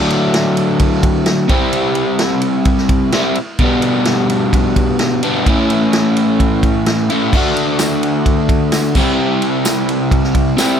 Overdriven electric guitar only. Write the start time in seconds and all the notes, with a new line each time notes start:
Already playing: D3 F#3 A3 D4
1.48 C3 G3 C4 E4
3.13 C3 G3 C4 E4
3.60 B2 G3 B3 D4
5.23 B2 G3 B3 D4
5.47 A2 E3 A3 C#4 E4
7.10 A2 E3 A3 C#4 E4
7.33 D3 A3 D4 F#4
8.96 C3 G3 C4 E4
10.57 C3 G3 C4 E4